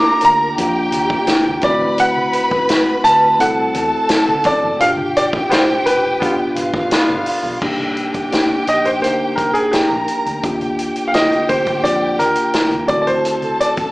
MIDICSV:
0, 0, Header, 1, 8, 480
1, 0, Start_track
1, 0, Tempo, 704225
1, 1354, Time_signature, 4, 2, 24, 8
1, 9484, End_track
2, 0, Start_track
2, 0, Title_t, "Grand piano"
2, 0, Program_c, 0, 0
2, 0, Note_on_c, 0, 86, 87
2, 166, Note_off_c, 0, 86, 0
2, 169, Note_on_c, 0, 82, 116
2, 1119, Note_on_c, 0, 74, 93
2, 1150, Note_off_c, 0, 82, 0
2, 1340, Note_off_c, 0, 74, 0
2, 1362, Note_on_c, 0, 78, 107
2, 2072, Note_on_c, 0, 81, 103
2, 2100, Note_off_c, 0, 78, 0
2, 2297, Note_off_c, 0, 81, 0
2, 2320, Note_on_c, 0, 78, 85
2, 3041, Note_on_c, 0, 74, 82
2, 3060, Note_off_c, 0, 78, 0
2, 3276, Note_on_c, 0, 77, 99
2, 3286, Note_off_c, 0, 74, 0
2, 3330, Note_off_c, 0, 77, 0
2, 3522, Note_on_c, 0, 74, 87
2, 3575, Note_off_c, 0, 74, 0
2, 3756, Note_on_c, 0, 72, 84
2, 3993, Note_on_c, 0, 71, 86
2, 4003, Note_off_c, 0, 72, 0
2, 4928, Note_off_c, 0, 71, 0
2, 5920, Note_on_c, 0, 75, 95
2, 6035, Note_on_c, 0, 72, 79
2, 6042, Note_off_c, 0, 75, 0
2, 6069, Note_off_c, 0, 72, 0
2, 6148, Note_on_c, 0, 72, 76
2, 6377, Note_on_c, 0, 70, 77
2, 6400, Note_off_c, 0, 72, 0
2, 6499, Note_on_c, 0, 68, 78
2, 6511, Note_off_c, 0, 70, 0
2, 6621, Note_on_c, 0, 67, 70
2, 6632, Note_off_c, 0, 68, 0
2, 7322, Note_off_c, 0, 67, 0
2, 7549, Note_on_c, 0, 77, 70
2, 7596, Note_on_c, 0, 75, 89
2, 7597, Note_off_c, 0, 77, 0
2, 7820, Note_off_c, 0, 75, 0
2, 7832, Note_on_c, 0, 72, 98
2, 8057, Note_off_c, 0, 72, 0
2, 8068, Note_on_c, 0, 74, 84
2, 8309, Note_on_c, 0, 70, 91
2, 8319, Note_off_c, 0, 74, 0
2, 8765, Note_off_c, 0, 70, 0
2, 8780, Note_on_c, 0, 74, 83
2, 8855, Note_off_c, 0, 74, 0
2, 8873, Note_on_c, 0, 74, 61
2, 8910, Note_on_c, 0, 72, 93
2, 8918, Note_off_c, 0, 74, 0
2, 9247, Note_off_c, 0, 72, 0
2, 9273, Note_on_c, 0, 74, 83
2, 9327, Note_off_c, 0, 74, 0
2, 9484, End_track
3, 0, Start_track
3, 0, Title_t, "Violin section"
3, 0, Program_c, 1, 48
3, 0, Note_on_c, 1, 70, 92
3, 0, Note_on_c, 1, 82, 99
3, 376, Note_off_c, 1, 70, 0
3, 376, Note_off_c, 1, 82, 0
3, 401, Note_on_c, 1, 67, 88
3, 401, Note_on_c, 1, 79, 93
3, 1103, Note_off_c, 1, 79, 0
3, 1104, Note_off_c, 1, 67, 0
3, 1124, Note_on_c, 1, 83, 90
3, 1129, Note_on_c, 1, 71, 89
3, 2296, Note_off_c, 1, 83, 0
3, 2298, Note_off_c, 1, 71, 0
3, 2316, Note_on_c, 1, 69, 88
3, 2319, Note_on_c, 1, 81, 90
3, 3257, Note_off_c, 1, 69, 0
3, 3259, Note_off_c, 1, 81, 0
3, 3277, Note_on_c, 1, 67, 83
3, 3278, Note_on_c, 1, 79, 94
3, 4453, Note_off_c, 1, 67, 0
3, 4454, Note_off_c, 1, 79, 0
3, 4469, Note_on_c, 1, 77, 85
3, 4470, Note_on_c, 1, 65, 74
3, 5178, Note_off_c, 1, 77, 0
3, 5179, Note_off_c, 1, 65, 0
3, 5191, Note_on_c, 1, 79, 90
3, 5192, Note_on_c, 1, 67, 84
3, 6607, Note_off_c, 1, 79, 0
3, 6608, Note_off_c, 1, 67, 0
3, 6633, Note_on_c, 1, 70, 76
3, 6635, Note_on_c, 1, 82, 81
3, 7106, Note_off_c, 1, 70, 0
3, 7107, Note_off_c, 1, 82, 0
3, 7111, Note_on_c, 1, 67, 79
3, 7112, Note_on_c, 1, 79, 90
3, 8766, Note_off_c, 1, 67, 0
3, 8766, Note_off_c, 1, 79, 0
3, 8783, Note_on_c, 1, 69, 80
3, 8787, Note_on_c, 1, 81, 87
3, 9484, Note_off_c, 1, 69, 0
3, 9484, Note_off_c, 1, 81, 0
3, 9484, End_track
4, 0, Start_track
4, 0, Title_t, "Tine electric piano"
4, 0, Program_c, 2, 4
4, 0, Control_c, 2, 64, 127
4, 0, Note_on_c, 2, 58, 71
4, 0, Note_on_c, 2, 62, 66
4, 0, Note_on_c, 2, 65, 64
4, 0, Note_on_c, 2, 67, 80
4, 235, Note_off_c, 2, 58, 0
4, 237, Note_off_c, 2, 62, 0
4, 239, Note_off_c, 2, 65, 0
4, 243, Note_off_c, 2, 67, 0
4, 387, Note_on_c, 2, 58, 73
4, 394, Note_on_c, 2, 62, 72
4, 399, Note_on_c, 2, 65, 71
4, 406, Note_on_c, 2, 67, 85
4, 1107, Note_on_c, 2, 57, 74
4, 1111, Note_off_c, 2, 58, 0
4, 1114, Note_off_c, 2, 62, 0
4, 1114, Note_on_c, 2, 60, 74
4, 1117, Note_off_c, 2, 65, 0
4, 1118, Note_on_c, 2, 64, 67
4, 1120, Note_off_c, 2, 67, 0
4, 1122, Control_c, 2, 64, 0
4, 1123, Note_on_c, 2, 66, 82
4, 1238, Control_c, 2, 64, 127
4, 1915, Note_off_c, 2, 57, 0
4, 1919, Note_off_c, 2, 60, 0
4, 1921, Note_off_c, 2, 64, 0
4, 1923, Note_off_c, 2, 66, 0
4, 2304, Note_on_c, 2, 57, 77
4, 2309, Note_on_c, 2, 60, 69
4, 2316, Note_on_c, 2, 64, 72
4, 2321, Note_on_c, 2, 69, 87
4, 3114, Note_off_c, 2, 57, 0
4, 3117, Note_off_c, 2, 60, 0
4, 3120, Note_off_c, 2, 64, 0
4, 3123, Note_off_c, 2, 69, 0
4, 3264, Note_on_c, 2, 47, 70
4, 3273, Note_on_c, 2, 62, 68
4, 3280, Note_on_c, 2, 65, 67
4, 3286, Control_c, 2, 64, 0
4, 3286, Note_on_c, 2, 67, 82
4, 3387, Control_c, 2, 64, 127
4, 4074, Note_off_c, 2, 47, 0
4, 4079, Note_off_c, 2, 62, 0
4, 4082, Note_off_c, 2, 65, 0
4, 4085, Note_off_c, 2, 67, 0
4, 4232, Note_on_c, 2, 59, 75
4, 4239, Note_on_c, 2, 62, 67
4, 4245, Note_on_c, 2, 65, 66
4, 4250, Note_on_c, 2, 67, 82
4, 5038, Note_off_c, 2, 59, 0
4, 5042, Note_off_c, 2, 62, 0
4, 5045, Note_off_c, 2, 65, 0
4, 5048, Note_off_c, 2, 67, 0
4, 5189, Note_on_c, 2, 58, 76
4, 5197, Note_on_c, 2, 62, 71
4, 5202, Note_on_c, 2, 63, 68
4, 5204, Control_c, 2, 64, 0
4, 5207, Note_on_c, 2, 67, 83
4, 5305, Control_c, 2, 64, 127
4, 5595, Note_off_c, 2, 58, 0
4, 5599, Note_off_c, 2, 62, 0
4, 5602, Note_off_c, 2, 63, 0
4, 5604, Note_off_c, 2, 67, 0
4, 5662, Note_on_c, 2, 58, 67
4, 5667, Note_on_c, 2, 62, 61
4, 5677, Note_on_c, 2, 63, 65
4, 5679, Note_on_c, 2, 67, 80
4, 6072, Note_off_c, 2, 58, 0
4, 6074, Note_off_c, 2, 62, 0
4, 6079, Note_off_c, 2, 63, 0
4, 6080, Note_off_c, 2, 67, 0
4, 6149, Note_on_c, 2, 58, 71
4, 6149, Note_on_c, 2, 62, 59
4, 6159, Note_on_c, 2, 63, 58
4, 6162, Note_on_c, 2, 70, 78
4, 6957, Note_off_c, 2, 58, 0
4, 6957, Note_off_c, 2, 62, 0
4, 6962, Note_off_c, 2, 63, 0
4, 6964, Note_off_c, 2, 70, 0
4, 7107, Note_on_c, 2, 58, 63
4, 7110, Note_on_c, 2, 62, 64
4, 7115, Note_on_c, 2, 65, 61
4, 7122, Note_on_c, 2, 67, 81
4, 7126, Control_c, 2, 64, 0
4, 7242, Control_c, 2, 64, 127
4, 7514, Note_off_c, 2, 58, 0
4, 7516, Note_off_c, 2, 62, 0
4, 7518, Note_off_c, 2, 65, 0
4, 7521, Note_off_c, 2, 67, 0
4, 7579, Note_on_c, 2, 58, 60
4, 7586, Note_on_c, 2, 50, 53
4, 7592, Note_on_c, 2, 65, 49
4, 7598, Note_on_c, 2, 70, 63
4, 7990, Note_off_c, 2, 58, 0
4, 7994, Note_off_c, 2, 50, 0
4, 7996, Note_off_c, 2, 65, 0
4, 7999, Note_off_c, 2, 70, 0
4, 8053, Note_on_c, 2, 58, 69
4, 8061, Note_on_c, 2, 62, 60
4, 8066, Note_on_c, 2, 65, 68
4, 8071, Note_on_c, 2, 67, 80
4, 8775, Note_on_c, 2, 57, 71
4, 8779, Note_on_c, 2, 60, 64
4, 8784, Note_off_c, 2, 58, 0
4, 8786, Note_on_c, 2, 64, 62
4, 8788, Note_off_c, 2, 62, 0
4, 8791, Note_off_c, 2, 65, 0
4, 8793, Note_off_c, 2, 67, 0
4, 8793, Note_on_c, 2, 66, 81
4, 8806, Control_c, 2, 64, 0
4, 8903, Control_c, 2, 64, 127
4, 9388, Note_off_c, 2, 57, 0
4, 9390, Note_off_c, 2, 60, 0
4, 9393, Note_off_c, 2, 64, 0
4, 9397, Note_off_c, 2, 66, 0
4, 9484, End_track
5, 0, Start_track
5, 0, Title_t, "Horn section"
5, 0, Program_c, 3, 61
5, 3749, Note_on_c, 3, 59, 67
5, 3751, Note_on_c, 3, 50, 67
5, 3752, Note_on_c, 3, 65, 78
5, 3854, Note_off_c, 3, 59, 0
5, 3855, Note_off_c, 3, 50, 0
5, 3856, Note_off_c, 3, 65, 0
5, 4229, Note_on_c, 3, 59, 68
5, 4230, Note_on_c, 3, 50, 68
5, 4231, Note_on_c, 3, 65, 77
5, 4334, Note_off_c, 3, 50, 0
5, 4334, Note_off_c, 3, 59, 0
5, 4335, Note_off_c, 3, 65, 0
5, 4710, Note_on_c, 3, 65, 80
5, 4711, Note_on_c, 3, 59, 77
5, 4712, Note_on_c, 3, 50, 74
5, 5169, Note_off_c, 3, 65, 0
5, 5170, Note_off_c, 3, 50, 0
5, 5170, Note_off_c, 3, 59, 0
5, 9484, End_track
6, 0, Start_track
6, 0, Title_t, "Fingered electric bass"
6, 0, Program_c, 4, 33
6, 158, Note_on_c, 4, 38, 92
6, 364, Note_off_c, 4, 38, 0
6, 404, Note_on_c, 4, 41, 88
6, 607, Note_off_c, 4, 41, 0
6, 644, Note_on_c, 4, 39, 89
6, 743, Note_off_c, 4, 39, 0
6, 999, Note_on_c, 4, 39, 96
6, 1101, Note_off_c, 4, 39, 0
6, 1112, Note_on_c, 4, 38, 91
6, 1633, Note_off_c, 4, 38, 0
6, 2072, Note_on_c, 4, 38, 104
6, 2282, Note_off_c, 4, 38, 0
6, 2314, Note_on_c, 4, 36, 89
6, 2523, Note_off_c, 4, 36, 0
6, 2554, Note_on_c, 4, 40, 104
6, 2658, Note_off_c, 4, 40, 0
6, 2916, Note_on_c, 4, 38, 76
6, 3020, Note_off_c, 4, 38, 0
6, 3156, Note_on_c, 4, 30, 93
6, 3260, Note_off_c, 4, 30, 0
6, 3277, Note_on_c, 4, 31, 86
6, 3589, Note_off_c, 4, 31, 0
6, 3996, Note_on_c, 4, 29, 99
6, 4412, Note_off_c, 4, 29, 0
6, 4475, Note_on_c, 4, 32, 97
6, 4683, Note_off_c, 4, 32, 0
6, 4834, Note_on_c, 4, 31, 85
6, 4939, Note_off_c, 4, 31, 0
6, 5077, Note_on_c, 4, 35, 82
6, 5181, Note_off_c, 4, 35, 0
6, 5192, Note_on_c, 4, 36, 90
6, 5506, Note_off_c, 4, 36, 0
6, 5912, Note_on_c, 4, 34, 84
6, 6157, Note_off_c, 4, 34, 0
6, 6157, Note_on_c, 4, 38, 93
6, 6365, Note_off_c, 4, 38, 0
6, 6394, Note_on_c, 4, 36, 83
6, 6499, Note_off_c, 4, 36, 0
6, 6757, Note_on_c, 4, 34, 74
6, 6861, Note_off_c, 4, 34, 0
6, 6997, Note_on_c, 4, 38, 93
6, 7101, Note_off_c, 4, 38, 0
6, 7116, Note_on_c, 4, 39, 93
6, 7428, Note_off_c, 4, 39, 0
6, 7835, Note_on_c, 4, 38, 86
6, 8044, Note_off_c, 4, 38, 0
6, 8077, Note_on_c, 4, 41, 86
6, 8285, Note_off_c, 4, 41, 0
6, 8313, Note_on_c, 4, 39, 82
6, 8419, Note_off_c, 4, 39, 0
6, 8666, Note_on_c, 4, 39, 88
6, 8774, Note_off_c, 4, 39, 0
6, 8791, Note_on_c, 4, 38, 97
6, 9313, Note_off_c, 4, 38, 0
6, 9484, End_track
7, 0, Start_track
7, 0, Title_t, "Muted fingered electric bass strokes"
7, 884, Note_on_c, 9, 29, 48
7, 952, Note_off_c, 9, 29, 0
7, 1714, Note_on_c, 9, 29, 44
7, 1782, Note_off_c, 9, 29, 0
7, 2794, Note_on_c, 9, 29, 51
7, 2862, Note_off_c, 9, 29, 0
7, 4719, Note_on_c, 9, 29, 49
7, 4787, Note_off_c, 9, 29, 0
7, 6636, Note_on_c, 9, 29, 41
7, 6704, Note_off_c, 9, 29, 0
7, 7482, Note_on_c, 9, 29, 38
7, 7550, Note_off_c, 9, 29, 0
7, 8552, Note_on_c, 9, 29, 46
7, 8620, Note_off_c, 9, 29, 0
7, 9388, Note_on_c, 9, 29, 46
7, 9457, Note_off_c, 9, 29, 0
7, 9484, End_track
8, 0, Start_track
8, 0, Title_t, "Drums"
8, 142, Note_on_c, 9, 42, 79
8, 210, Note_off_c, 9, 42, 0
8, 395, Note_on_c, 9, 42, 81
8, 400, Note_on_c, 9, 64, 65
8, 464, Note_off_c, 9, 42, 0
8, 468, Note_off_c, 9, 64, 0
8, 513, Note_on_c, 9, 62, 31
8, 581, Note_off_c, 9, 62, 0
8, 626, Note_on_c, 9, 63, 67
8, 628, Note_on_c, 9, 42, 84
8, 694, Note_off_c, 9, 63, 0
8, 696, Note_off_c, 9, 42, 0
8, 750, Note_on_c, 9, 36, 98
8, 818, Note_off_c, 9, 36, 0
8, 863, Note_on_c, 9, 62, 33
8, 866, Note_on_c, 9, 42, 98
8, 872, Note_on_c, 9, 38, 105
8, 931, Note_off_c, 9, 62, 0
8, 934, Note_off_c, 9, 42, 0
8, 940, Note_off_c, 9, 38, 0
8, 995, Note_on_c, 9, 62, 29
8, 995, Note_on_c, 9, 63, 69
8, 1063, Note_off_c, 9, 62, 0
8, 1063, Note_off_c, 9, 63, 0
8, 1100, Note_on_c, 9, 42, 71
8, 1111, Note_on_c, 9, 36, 113
8, 1168, Note_off_c, 9, 42, 0
8, 1180, Note_off_c, 9, 36, 0
8, 1236, Note_on_c, 9, 64, 75
8, 1304, Note_off_c, 9, 64, 0
8, 1349, Note_on_c, 9, 42, 90
8, 1358, Note_on_c, 9, 62, 31
8, 1417, Note_off_c, 9, 42, 0
8, 1426, Note_off_c, 9, 62, 0
8, 1479, Note_on_c, 9, 63, 91
8, 1547, Note_off_c, 9, 63, 0
8, 1589, Note_on_c, 9, 42, 73
8, 1658, Note_off_c, 9, 42, 0
8, 1713, Note_on_c, 9, 36, 94
8, 1781, Note_off_c, 9, 36, 0
8, 1832, Note_on_c, 9, 42, 85
8, 1840, Note_on_c, 9, 38, 109
8, 1841, Note_on_c, 9, 62, 36
8, 1900, Note_off_c, 9, 42, 0
8, 1908, Note_off_c, 9, 38, 0
8, 1910, Note_off_c, 9, 62, 0
8, 2076, Note_on_c, 9, 42, 83
8, 2144, Note_off_c, 9, 42, 0
8, 2318, Note_on_c, 9, 42, 84
8, 2321, Note_on_c, 9, 62, 30
8, 2321, Note_on_c, 9, 64, 65
8, 2386, Note_off_c, 9, 42, 0
8, 2390, Note_off_c, 9, 62, 0
8, 2390, Note_off_c, 9, 64, 0
8, 2442, Note_on_c, 9, 62, 31
8, 2510, Note_off_c, 9, 62, 0
8, 2552, Note_on_c, 9, 63, 70
8, 2553, Note_on_c, 9, 42, 81
8, 2620, Note_off_c, 9, 63, 0
8, 2621, Note_off_c, 9, 42, 0
8, 2787, Note_on_c, 9, 42, 97
8, 2793, Note_on_c, 9, 38, 112
8, 2793, Note_on_c, 9, 62, 32
8, 2855, Note_off_c, 9, 42, 0
8, 2861, Note_off_c, 9, 62, 0
8, 2862, Note_off_c, 9, 38, 0
8, 2922, Note_on_c, 9, 63, 72
8, 2990, Note_off_c, 9, 63, 0
8, 3025, Note_on_c, 9, 42, 75
8, 3034, Note_on_c, 9, 36, 94
8, 3093, Note_off_c, 9, 42, 0
8, 3102, Note_off_c, 9, 36, 0
8, 3155, Note_on_c, 9, 64, 70
8, 3223, Note_off_c, 9, 64, 0
8, 3275, Note_on_c, 9, 42, 83
8, 3343, Note_off_c, 9, 42, 0
8, 3387, Note_on_c, 9, 62, 40
8, 3387, Note_on_c, 9, 63, 92
8, 3455, Note_off_c, 9, 62, 0
8, 3455, Note_off_c, 9, 63, 0
8, 3521, Note_on_c, 9, 42, 75
8, 3589, Note_off_c, 9, 42, 0
8, 3634, Note_on_c, 9, 36, 100
8, 3702, Note_off_c, 9, 36, 0
8, 3754, Note_on_c, 9, 62, 34
8, 3758, Note_on_c, 9, 42, 86
8, 3767, Note_on_c, 9, 38, 113
8, 3822, Note_off_c, 9, 62, 0
8, 3826, Note_off_c, 9, 42, 0
8, 3835, Note_off_c, 9, 38, 0
8, 3864, Note_on_c, 9, 63, 48
8, 3932, Note_off_c, 9, 63, 0
8, 3997, Note_on_c, 9, 42, 81
8, 4065, Note_off_c, 9, 42, 0
8, 4239, Note_on_c, 9, 36, 89
8, 4239, Note_on_c, 9, 62, 30
8, 4239, Note_on_c, 9, 64, 61
8, 4243, Note_on_c, 9, 42, 77
8, 4307, Note_off_c, 9, 62, 0
8, 4307, Note_off_c, 9, 64, 0
8, 4308, Note_off_c, 9, 36, 0
8, 4311, Note_off_c, 9, 42, 0
8, 4355, Note_on_c, 9, 62, 29
8, 4423, Note_off_c, 9, 62, 0
8, 4467, Note_on_c, 9, 63, 65
8, 4474, Note_on_c, 9, 42, 76
8, 4535, Note_off_c, 9, 63, 0
8, 4542, Note_off_c, 9, 42, 0
8, 4591, Note_on_c, 9, 36, 98
8, 4659, Note_off_c, 9, 36, 0
8, 4709, Note_on_c, 9, 62, 33
8, 4711, Note_on_c, 9, 42, 100
8, 4717, Note_on_c, 9, 38, 110
8, 4777, Note_off_c, 9, 62, 0
8, 4779, Note_off_c, 9, 42, 0
8, 4785, Note_off_c, 9, 38, 0
8, 4836, Note_on_c, 9, 62, 31
8, 4836, Note_on_c, 9, 63, 68
8, 4904, Note_off_c, 9, 62, 0
8, 4904, Note_off_c, 9, 63, 0
8, 4948, Note_on_c, 9, 46, 69
8, 5016, Note_off_c, 9, 46, 0
8, 5068, Note_on_c, 9, 64, 73
8, 5136, Note_off_c, 9, 64, 0
8, 5191, Note_on_c, 9, 49, 82
8, 5191, Note_on_c, 9, 62, 28
8, 5192, Note_on_c, 9, 36, 98
8, 5260, Note_off_c, 9, 49, 0
8, 5260, Note_off_c, 9, 62, 0
8, 5261, Note_off_c, 9, 36, 0
8, 5312, Note_on_c, 9, 63, 76
8, 5380, Note_off_c, 9, 63, 0
8, 5430, Note_on_c, 9, 42, 64
8, 5499, Note_off_c, 9, 42, 0
8, 5549, Note_on_c, 9, 42, 46
8, 5551, Note_on_c, 9, 36, 78
8, 5617, Note_off_c, 9, 42, 0
8, 5620, Note_off_c, 9, 36, 0
8, 5673, Note_on_c, 9, 42, 76
8, 5681, Note_on_c, 9, 38, 109
8, 5741, Note_off_c, 9, 42, 0
8, 5749, Note_off_c, 9, 38, 0
8, 5787, Note_on_c, 9, 62, 31
8, 5787, Note_on_c, 9, 63, 44
8, 5855, Note_off_c, 9, 62, 0
8, 5855, Note_off_c, 9, 63, 0
8, 5911, Note_on_c, 9, 42, 79
8, 5979, Note_off_c, 9, 42, 0
8, 6033, Note_on_c, 9, 42, 39
8, 6102, Note_off_c, 9, 42, 0
8, 6157, Note_on_c, 9, 62, 30
8, 6157, Note_on_c, 9, 64, 54
8, 6160, Note_on_c, 9, 42, 73
8, 6225, Note_off_c, 9, 62, 0
8, 6225, Note_off_c, 9, 64, 0
8, 6229, Note_off_c, 9, 42, 0
8, 6272, Note_on_c, 9, 62, 31
8, 6340, Note_off_c, 9, 62, 0
8, 6387, Note_on_c, 9, 63, 59
8, 6392, Note_on_c, 9, 36, 83
8, 6395, Note_on_c, 9, 42, 70
8, 6456, Note_off_c, 9, 63, 0
8, 6460, Note_off_c, 9, 36, 0
8, 6463, Note_off_c, 9, 42, 0
8, 6508, Note_on_c, 9, 42, 51
8, 6576, Note_off_c, 9, 42, 0
8, 6626, Note_on_c, 9, 62, 29
8, 6630, Note_on_c, 9, 42, 95
8, 6636, Note_on_c, 9, 38, 94
8, 6694, Note_off_c, 9, 62, 0
8, 6698, Note_off_c, 9, 42, 0
8, 6705, Note_off_c, 9, 38, 0
8, 6754, Note_on_c, 9, 63, 57
8, 6822, Note_off_c, 9, 63, 0
8, 6869, Note_on_c, 9, 42, 60
8, 6937, Note_off_c, 9, 42, 0
8, 6988, Note_on_c, 9, 64, 65
8, 6995, Note_on_c, 9, 42, 40
8, 7056, Note_off_c, 9, 64, 0
8, 7063, Note_off_c, 9, 42, 0
8, 7111, Note_on_c, 9, 42, 77
8, 7114, Note_on_c, 9, 36, 93
8, 7179, Note_off_c, 9, 42, 0
8, 7182, Note_off_c, 9, 36, 0
8, 7231, Note_on_c, 9, 42, 34
8, 7235, Note_on_c, 9, 62, 36
8, 7235, Note_on_c, 9, 63, 77
8, 7299, Note_off_c, 9, 42, 0
8, 7303, Note_off_c, 9, 62, 0
8, 7303, Note_off_c, 9, 63, 0
8, 7353, Note_on_c, 9, 42, 68
8, 7421, Note_off_c, 9, 42, 0
8, 7468, Note_on_c, 9, 42, 50
8, 7536, Note_off_c, 9, 42, 0
8, 7592, Note_on_c, 9, 42, 82
8, 7593, Note_on_c, 9, 62, 31
8, 7600, Note_on_c, 9, 38, 96
8, 7660, Note_off_c, 9, 42, 0
8, 7661, Note_off_c, 9, 62, 0
8, 7669, Note_off_c, 9, 38, 0
8, 7707, Note_on_c, 9, 62, 27
8, 7707, Note_on_c, 9, 63, 45
8, 7717, Note_on_c, 9, 42, 30
8, 7775, Note_off_c, 9, 62, 0
8, 7775, Note_off_c, 9, 63, 0
8, 7785, Note_off_c, 9, 42, 0
8, 7832, Note_on_c, 9, 42, 71
8, 7834, Note_on_c, 9, 36, 84
8, 7901, Note_off_c, 9, 42, 0
8, 7903, Note_off_c, 9, 36, 0
8, 7949, Note_on_c, 9, 42, 41
8, 7954, Note_on_c, 9, 36, 81
8, 8017, Note_off_c, 9, 42, 0
8, 8022, Note_off_c, 9, 36, 0
8, 8077, Note_on_c, 9, 62, 26
8, 8077, Note_on_c, 9, 64, 58
8, 8078, Note_on_c, 9, 42, 75
8, 8145, Note_off_c, 9, 62, 0
8, 8145, Note_off_c, 9, 64, 0
8, 8146, Note_off_c, 9, 42, 0
8, 8306, Note_on_c, 9, 63, 61
8, 8313, Note_on_c, 9, 42, 73
8, 8374, Note_off_c, 9, 63, 0
8, 8381, Note_off_c, 9, 42, 0
8, 8421, Note_on_c, 9, 42, 55
8, 8489, Note_off_c, 9, 42, 0
8, 8544, Note_on_c, 9, 42, 97
8, 8551, Note_on_c, 9, 38, 100
8, 8613, Note_off_c, 9, 42, 0
8, 8619, Note_off_c, 9, 38, 0
8, 8664, Note_on_c, 9, 42, 29
8, 8672, Note_on_c, 9, 62, 29
8, 8672, Note_on_c, 9, 63, 62
8, 8732, Note_off_c, 9, 42, 0
8, 8740, Note_off_c, 9, 62, 0
8, 8740, Note_off_c, 9, 63, 0
8, 8781, Note_on_c, 9, 42, 66
8, 8789, Note_on_c, 9, 36, 100
8, 8849, Note_off_c, 9, 42, 0
8, 8857, Note_off_c, 9, 36, 0
8, 8908, Note_on_c, 9, 42, 42
8, 8908, Note_on_c, 9, 64, 66
8, 8976, Note_off_c, 9, 64, 0
8, 8977, Note_off_c, 9, 42, 0
8, 9030, Note_on_c, 9, 42, 74
8, 9098, Note_off_c, 9, 42, 0
8, 9148, Note_on_c, 9, 42, 30
8, 9148, Note_on_c, 9, 62, 39
8, 9148, Note_on_c, 9, 63, 80
8, 9216, Note_off_c, 9, 42, 0
8, 9216, Note_off_c, 9, 62, 0
8, 9216, Note_off_c, 9, 63, 0
8, 9274, Note_on_c, 9, 42, 65
8, 9342, Note_off_c, 9, 42, 0
8, 9385, Note_on_c, 9, 42, 45
8, 9389, Note_on_c, 9, 36, 91
8, 9453, Note_off_c, 9, 42, 0
8, 9457, Note_off_c, 9, 36, 0
8, 9484, End_track
0, 0, End_of_file